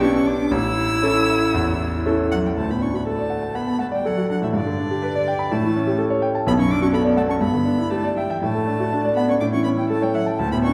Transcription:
Already playing: B1
0.00 B3 C#4 D4 G4 C#6
0.14 C#4 C#6
0.26 D4 D6
0.51 A1 E4 E6
1.03 C#4 E4 A4
1.54 E2
2.05 C#4 E4 A4
2.31 F#3 F#5
2.45 G3 G5
2.56 D2 A3 A5
2.69 A2 B3 B5
2.81 C#4 D4 C#6
2.93 B3 F#4 B5
3.06 A3 A4 A5
3.18 D5
3.30 F#5
3.42 A5
3.54 B3 F#5 B5
3.67 A5
3.79 A3 F#5 A5
3.91 G3 D5 G5
4.05 F#3 A4 F#5
4.17 F#4
4.29 F#3 D4 F#5
4.41 A2 E3 E5
4.53 G2 D3 D5
4.66 D3
4.79 D4
4.91 G4
5.02 B4
5.15 D5
5.28 G5
5.39 B5
5.51 A2 A3 A5
5.63 E3
5.76 C#4
5.87 G4
5.98 A4
6.10 C#5
6.22 G5
6.35 A5
6.46 B1 B3 B5
6.58 F#2 C#4 C#6
6.69 D4 D6
6.82 C#4 F#4 C#6
6.92 B3 A4 B5
7.04 D5
7.17 A3 F#5 A5
7.28 C#4 A5 C#6
7.40 G2 B3 B5
7.53 D3
7.65 D4
7.78 E4
7.90 A3 G4 A5
8.04 D5
8.15 G3 E5 G5
8.29 E3 E5 G5
8.41 A2 A3 A5
8.55 A3
8.67 D4
8.80 F#4
8.93 D4
9.04 D5
9.15 B3 F#5 B5
9.28 C#4 D5 C#6
9.40 A2 D4 D6
9.52 E3 C#4 C#6
9.64 B3 C#4 B5
9.77 G3 E4 G5
9.89 A3 A4 A5
10.01 G3 C#5 G5
10.13 F#3 E5 F#5
10.26 G3 G5 A5
10.38 D2 A3 A5
10.52 A2 B3 B5
10.63 C#4 D4 C#6

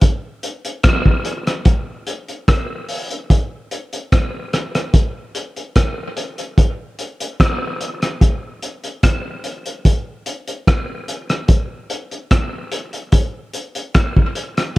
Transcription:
0.01 kick, closed hi-hat
0.43 closed hi-hat
0.65 closed hi-hat
0.83 kick, cross-stick, closed hi-hat
1.06 kick
1.25 closed hi-hat
1.47 cross-stick, closed hi-hat
1.65 kick, closed hi-hat
2.07 closed hi-hat
2.28 closed hi-hat
2.48 kick, cross-stick, closed hi-hat
2.89 open hi-hat
3.11 closed hi-hat
3.30 kick, closed hi-hat
3.71 closed hi-hat
3.93 closed hi-hat
4.12 kick, cross-stick, closed hi-hat
4.53 cross-stick, closed hi-hat
4.75 cross-stick, closed hi-hat
4.94 kick, closed hi-hat
5.35 closed hi-hat
5.56 closed hi-hat
5.76 kick, cross-stick, closed hi-hat
6.17 closed hi-hat
6.38 closed hi-hat
6.58 kick, closed hi-hat
6.99 closed hi-hat
7.20 closed hi-hat
7.40 kick, cross-stick, closed hi-hat
7.81 closed hi-hat
8.02 cross-stick, closed hi-hat
8.21 kick, closed hi-hat
8.62 closed hi-hat
8.84 closed hi-hat
9.03 kick, cross-stick, closed hi-hat
9.44 closed hi-hat
9.66 closed hi-hat
9.85 kick, closed hi-hat
10.26 closed hi-hat
10.48 closed hi-hat
10.67 kick, cross-stick, closed hi-hat
11.08 closed hi-hat
11.30 cross-stick, closed hi-hat
11.48 kick, closed hi-hat
11.90 closed hi-hat
12.11 closed hi-hat
12.31 kick, cross-stick, closed hi-hat
12.72 closed hi-hat
12.93 closed hi-hat
13.12 kick, closed hi-hat
13.54 closed hi-hat
13.75 closed hi-hat
13.94 kick, cross-stick, closed hi-hat
14.17 kick
14.35 closed hi-hat
14.57 cross-stick, closed hi-hat

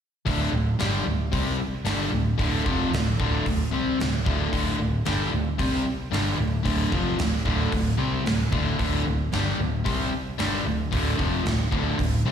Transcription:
0.25 D1 D2 A2 D3, kick, open hi-hat
0.52 D1 D2 A2
0.79 G1 G2 D3 G3, snare, open hi-hat
1.05 D1 D2 A2
1.32 C2 C3 G3 C4, kick, open hi-hat
1.58 muted fingered electric bass stroke, muted overdriven electric guitar stroke, muted distorted electric guitar stroke
1.84 G1 G2 D3 G3, snare, open hi-hat
2.11 D1 D2 A2
2.38 D1 D2 A2 D3, kick, open hi-hat
2.65 F1 F2 C3 F3, kick
2.92 D1 D2 A2, snare, open hi-hat
3.19 D1 D2 A2 D3, kick
3.45 D1 D2 A2, kick, open hi-hat
3.71 C2 C3 G3 C4
3.98 D1 D2 A2, snare, open hi-hat
4.25 D1 D2 A2 D3, kick
4.51 D1 D2 A2 D3, kick, open hi-hat
4.78 D1 D2 A2
5.05 G1 G2 D3 G3, snare, open hi-hat
5.32 D1 D2 A2
5.58 C2 C3 G3 C4, kick, open hi-hat
5.84 muted overdriven electric guitar stroke, muted fingered electric bass stroke, muted distorted electric guitar stroke
6.11 G1 G2 D3 G3, snare, open hi-hat
6.38 D1 D2 A2
6.63 D1 D2 A2 D3, kick, open hi-hat
6.91 F1 F2 C3 F3, kick
7.18 D1 D2 A2, snare, open hi-hat
7.45 D1 D2 A2 D3, kick
7.72 D1 D2 A2, kick, open hi-hat
7.97 C2 C3 G3 C4
8.24 D1 D2 A2, snare, open hi-hat
8.52 D1 D2 A2 D3, kick
8.79 D1 D2 A2 D3, kick, open hi-hat
9.05 D1 D2 A2
9.32 G1 G2 D3 G3, snare, open hi-hat
9.58 D1 D2 A2
9.84 C2 C3 G3 C4, kick, open hi-hat
10.12 muted overdriven electric guitar stroke, muted fingered electric bass stroke, muted distorted electric guitar stroke
10.38 G1 G2 D3 G3, snare, open hi-hat
10.65 D1 D2 A2
10.91 D1 D2 A2 D3, kick, open hi-hat
11.16 F1 F2 C3 F3, kick
11.43 D1 D2 A2, snare, open hi-hat
11.71 D1 D2 A2 D3, kick
11.99 D1 D2 A2, kick, open hi-hat
12.25 C2 C3 G3 C4

